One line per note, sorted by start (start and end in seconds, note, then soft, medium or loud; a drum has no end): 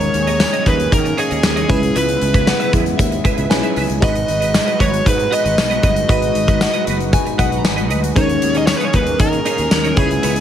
0.00 1.68 D#3 medium
0.00 1.65 G#3 medium
0.00 1.68 A#3 medium
0.00 1.66 C#4 medium
0.00 1.68 C#4 medium
0.00 1.66 D#4 medium
0.00 1.66 G#4 medium
0.00 1.66 A#4 medium
0.00 0.69 C#5 loud
0.00 muted clean electric guitar stroke soft
0.00 closed hi-hat medium
0.14 0.43 D#2 medium
0.14 muted clean electric guitar stroke soft
0.14 closed hi-hat medium
0.27 0.39 G#4 medium
0.27 0.39 C#5 medium
0.27 0.40 D#5 medium
0.27 closed hi-hat medium
0.40 snare loud
0.40 tambourine medium
0.53 0.65 G#4 medium
0.53 0.66 C#5 medium
0.53 0.66 D#5 medium
0.53 closed hi-hat soft
0.66 0.86 D#2 medium
0.66 0.82 G#4 medium
0.66 0.93 B4 medium
0.66 0.79 C#5 medium
0.66 0.78 D#5 medium
0.66 kick medium
0.66 closed hi-hat medium
0.79 muted clean electric guitar stroke soft
0.79 closed hi-hat medium
0.92 1.12 D#3 loud
0.92 1.19 A#4 loud
0.92 muted clean electric guitar stroke soft
0.92 kick medium
0.92 closed hi-hat medium
1.05 muted clean electric guitar stroke soft
1.05 closed hi-hat soft
1.18 1.31 G#4 medium
1.18 1.97 G#4 medium
1.18 1.30 C#5 medium
1.18 1.29 D#5 medium
1.18 closed hi-hat medium
1.30 1.41 D#2 medium
1.30 1.42 G#4 medium
1.30 1.43 C#5 medium
1.30 1.43 D#5 medium
1.30 closed hi-hat soft
1.43 1.63 D#2 medium
1.43 muted clean electric guitar stroke soft
1.43 snare loud
1.43 tambourine medium
1.56 1.68 G#4 medium
1.56 1.69 C#5 medium
1.56 1.70 D#5 medium
1.56 closed hi-hat soft
1.68 1.89 C#2 loud
1.68 4.00 C#3 medium
1.68 3.46 G#3 medium
1.68 8.12 G#3 medium
1.68 4.00 B3 medium
1.68 3.46 C#4 medium
1.68 3.47 E4 medium
1.68 4.00 E4 medium
1.68 1.85 G#4 medium
1.68 1.82 B4 medium
1.68 3.47 B4 medium
1.68 1.81 E5 medium
1.68 kick loud
1.68 closed hi-hat medium
1.82 muted clean electric guitar stroke soft
1.82 closed hi-hat medium
1.95 2.15 C#2 loud
1.95 2.16 G#4 medium
1.95 2.08 B4 medium
1.95 2.70 B4 medium
1.95 2.07 E5 medium
1.95 closed hi-hat medium
2.08 muted clean electric guitar stroke medium
2.08 closed hi-hat medium
2.21 2.51 C#2 loud
2.21 muted clean electric guitar stroke soft
2.21 closed hi-hat medium
2.34 2.46 G#4 soft
2.34 2.47 B4 medium
2.34 2.47 E5 medium
2.34 kick medium
2.34 closed hi-hat medium
2.47 2.95 F#5 medium
2.47 muted clean electric guitar stroke soft
2.47 snare loud
2.47 tambourine medium
2.60 2.71 G#4 medium
2.60 2.72 B4 medium
2.60 2.73 E5 medium
2.60 closed hi-hat soft
2.72 2.93 E2 medium
2.72 2.88 G#4 medium
2.72 2.85 B4 medium
2.72 2.84 E5 medium
2.72 kick medium
2.72 closed hi-hat medium
2.85 muted clean electric guitar stroke medium
2.85 closed hi-hat medium
2.97 3.19 D#2 loud
2.97 3.52 E5 medium
2.97 muted clean electric guitar stroke soft
2.97 kick medium
2.97 closed hi-hat medium
3.12 muted clean electric guitar stroke soft
3.12 closed hi-hat soft
3.24 3.37 G#4 medium
3.24 3.37 B4 medium
3.24 3.36 E5 medium
3.24 kick medium
3.24 closed hi-hat medium
3.37 3.48 C#2 medium
3.37 3.49 G#4 medium
3.37 3.50 B4 medium
3.37 3.50 E5 medium
3.37 closed hi-hat soft
3.50 3.61 B1 medium
3.50 3.99 G#3 medium
3.50 4.02 C#4 medium
3.50 3.57 D#4 soft
3.50 4.02 B4 medium
3.50 3.86 G#5 loud
3.50 muted clean electric guitar stroke soft
3.50 snare loud
3.50 tambourine medium
3.56 4.05 E4 medium
3.63 3.75 G#4 medium
3.63 3.76 B4 medium
3.63 3.77 E5 medium
3.63 closed hi-hat soft
3.76 3.86 C#2 medium
3.76 3.97 G#4 medium
3.76 3.89 B4 medium
3.76 3.88 E5 medium
3.76 open hi-hat medium
3.90 3.99 C#2 medium
3.90 muted clean electric guitar stroke soft
3.90 closed hi-hat medium
4.00 4.22 G#1 loud
4.00 6.04 G#3 medium
4.00 6.05 D#4 medium
4.00 8.12 D#4 medium
4.00 6.05 F#4 medium
4.00 4.22 F#4 medium
4.00 8.12 F#4 medium
4.00 8.12 B4 medium
4.00 6.05 B4 medium
4.00 4.15 B4 medium
4.00 4.80 D#5 loud
4.00 4.14 D#5 loud
4.00 kick loud
4.00 closed hi-hat medium
4.15 muted clean electric guitar stroke soft
4.15 closed hi-hat medium
4.28 4.58 G#1 loud
4.28 muted clean electric guitar stroke soft
4.28 closed hi-hat medium
4.41 4.52 F#4 medium
4.41 4.53 B4 medium
4.41 4.53 D#5 medium
4.41 closed hi-hat medium
4.54 snare loud
4.54 tambourine medium
4.66 4.78 F#4 medium
4.66 4.79 B4 medium
4.66 4.79 D#5 medium
4.66 closed hi-hat soft
4.79 4.99 G#1 medium
4.79 4.95 F#4 medium
4.79 4.92 B4 medium
4.79 5.07 C#5 medium
4.79 4.91 D#5 medium
4.79 kick medium
4.79 closed hi-hat medium
4.92 muted clean electric guitar stroke soft
4.92 closed hi-hat medium
5.05 5.26 G#2 loud
5.05 5.33 B4 medium
5.05 muted clean electric guitar stroke soft
5.05 kick loud
5.05 closed hi-hat loud
5.18 muted clean electric guitar stroke soft
5.18 closed hi-hat soft
5.31 5.44 F#4 medium
5.31 5.43 B4 medium
5.31 5.43 D#5 loud
5.31 6.09 D#5 loud
5.31 closed hi-hat medium
5.44 5.55 G#1 medium
5.44 5.56 F#4 medium
5.44 5.56 B4 medium
5.44 5.57 D#5 medium
5.44 closed hi-hat medium
5.57 5.77 B1 medium
5.57 muted clean electric guitar stroke soft
5.57 snare loud
5.57 tambourine medium
5.70 5.81 F#4 medium
5.70 5.82 B4 medium
5.70 5.83 D#5 medium
5.70 closed hi-hat soft
5.82 6.03 G1 medium
5.82 5.99 F#4 medium
5.82 5.96 B4 medium
5.82 5.94 D#5 medium
5.82 kick medium
5.82 closed hi-hat medium
5.96 muted clean electric guitar stroke soft
5.96 closed hi-hat medium
6.08 6.29 G#1 loud
6.08 8.11 G#3 medium
6.08 8.12 D#4 medium
6.08 6.29 F#4 medium
6.08 8.12 F#4 medium
6.08 6.22 B4 medium
6.08 8.13 B4 medium
6.08 6.83 D#5 medium
6.08 6.21 D#5 medium
6.08 kick loud
6.08 closed hi-hat medium
6.22 muted clean electric guitar stroke soft
6.22 closed hi-hat medium
6.35 6.64 G#1 medium
6.35 muted clean electric guitar stroke soft
6.35 closed hi-hat medium
6.48 6.60 F#4 medium
6.48 6.60 B4 medium
6.48 6.61 D#5 medium
6.48 kick medium
6.48 closed hi-hat medium
6.61 7.14 F#5 medium
6.61 muted clean electric guitar stroke soft
6.61 snare loud
6.61 tambourine medium
6.74 6.85 F#4 medium
6.74 6.86 B4 medium
6.74 6.87 D#5 medium
6.74 closed hi-hat medium
6.86 7.16 F#1 medium
6.86 7.02 F#4 medium
6.86 6.99 B4 medium
6.86 6.98 D#5 medium
6.86 closed hi-hat medium
6.99 muted clean electric guitar stroke soft
6.99 closed hi-hat soft
7.13 7.37 G#5 loud
7.13 muted clean electric guitar stroke soft
7.13 kick loud
7.13 closed hi-hat medium
7.26 muted clean electric guitar stroke medium
7.26 closed hi-hat soft
7.38 7.65 B1 medium
7.38 7.51 F#4 medium
7.38 7.50 B4 medium
7.38 7.50 D#5 medium
7.38 7.58 F#5 loud
7.38 kick medium
7.38 closed hi-hat medium
7.51 7.62 F#4 medium
7.51 7.63 B4 medium
7.51 7.64 D#5 medium
7.51 closed hi-hat medium
7.58 7.65 A#5 medium
7.64 7.91 G#1 medium
7.64 8.01 G#5 medium
7.64 muted clean electric guitar stroke soft
7.64 snare loud
7.64 tambourine medium
7.76 7.89 F#4 medium
7.76 7.89 B4 medium
7.76 7.90 D#5 medium
7.76 closed hi-hat soft
7.90 8.10 D2 medium
7.90 8.10 F#4 medium
7.90 8.03 B4 medium
7.90 8.02 D#5 loud
7.90 closed hi-hat medium
8.03 muted clean electric guitar stroke soft
8.03 closed hi-hat medium
8.15 8.36 D#2 loud
8.15 9.96 D#3 medium
8.15 9.93 G#3 medium
8.15 9.96 A#3 medium
8.15 9.94 C#4 medium
8.15 9.96 C#4 medium
8.15 8.36 D#4 medium
8.15 9.94 D#4 medium
8.15 8.29 G#4 medium
8.15 9.96 G#4 medium
8.15 9.94 A#4 medium
8.15 8.57 C#5 loud
8.15 8.28 C#5 loud
8.15 kick loud
8.15 closed hi-hat medium
8.29 muted clean electric guitar stroke medium
8.29 closed hi-hat medium
8.42 8.72 D#2 loud
8.42 muted clean electric guitar stroke medium
8.42 closed hi-hat medium
8.55 8.67 D#4 medium
8.55 8.68 G#4 medium
8.55 8.68 C#5 medium
8.55 8.66 D#5 medium
8.55 closed hi-hat medium
8.67 8.76 C#5 loud
8.67 muted clean electric guitar stroke soft
8.67 snare loud
8.67 tambourine medium
8.76 8.85 B4 loud
8.80 8.92 D#4 medium
8.80 8.93 G#4 medium
8.80 8.94 C#5 medium
8.80 closed hi-hat soft
8.85 8.94 C#5 loud
8.93 9.13 D#2 medium
8.93 9.10 D#4 medium
8.93 9.07 G#4 medium
8.93 9.20 B4 medium
8.93 9.06 C#5 medium
8.93 kick medium
8.93 closed hi-hat medium
9.07 muted clean electric guitar stroke soft
9.07 closed hi-hat soft
9.19 9.39 D#3 loud
9.19 9.98 A#4 loud
9.19 muted clean electric guitar stroke soft
9.19 kick medium
9.19 closed hi-hat medium
9.32 muted clean electric guitar stroke soft
9.32 closed hi-hat soft
9.45 9.59 D#4 medium
9.45 9.58 G#4 medium
9.45 9.57 C#5 loud
9.45 closed hi-hat medium
9.58 9.68 D#2 medium
9.58 9.70 D#4 soft
9.58 9.70 G#4 medium
9.58 9.71 C#5 medium
9.58 closed hi-hat medium
9.71 9.91 D#2 medium
9.71 snare loud
9.71 tambourine medium
9.84 9.96 D#4 medium
9.84 9.97 G#4 medium
9.84 9.97 C#5 medium
9.84 closed hi-hat medium
9.96 10.17 C#2 medium
9.96 10.40 C#3 medium
9.96 10.40 G#3 medium
9.96 10.40 B3 medium
9.96 10.40 C#4 medium
9.96 10.13 E4 medium
9.96 10.40 E4 medium
9.96 10.40 G#4 medium
9.96 10.09 B4 medium
9.96 10.40 B4 medium
9.96 10.08 C#5 medium
9.96 kick loud
9.96 closed hi-hat medium
10.10 muted clean electric guitar stroke soft
10.10 closed hi-hat medium
10.23 10.40 C#2 loud
10.23 10.40 E4 medium
10.23 10.35 B4 medium
10.23 10.34 C#5 medium
10.23 closed hi-hat loud
10.36 muted clean electric guitar stroke medium
10.36 closed hi-hat medium